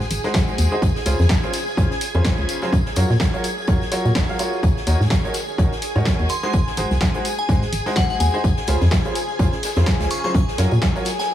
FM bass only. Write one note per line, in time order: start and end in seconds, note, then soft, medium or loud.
0.11 0.19 G#1 medium
0.58 0.67 D#2 medium
0.82 0.91 C#2 loud
1.06 1.14 C#2 loud
1.19 1.26 F2 loud
1.77 1.86 C#2 medium
2.15 2.21 F2 loud
2.39 2.45 C#2 medium
2.73 2.81 F#2 loud
2.96 3.05 F#2 loud
3.10 3.16 A#2 loud
3.68 3.84 F#1 medium
4.05 4.12 A#2 medium
4.15 4.24 F#1 medium
4.63 4.72 D#2 loud
4.87 4.95 D#2 loud
5.00 5.07 G#2 loud
5.58 5.67 D#2 medium
5.96 6.02 G#2 loud
6.20 6.26 D#2 medium
6.54 6.62 G#1 loud
6.77 6.86 G#1 medium
6.91 6.97 C2 loud
7.49 7.65 G#2 medium
7.73 7.81 G#1 medium
8.20 8.29 D#2 medium
8.44 8.53 C#2 loud
8.68 8.76 C#2 loud
8.81 8.88 F2 loud
9.39 9.48 C#2 medium
9.77 9.83 F2 loud
10.00 10.07 C#2 medium
10.35 10.43 F#2 loud
10.58 10.67 F#2 loud
10.72 10.78 A#2 loud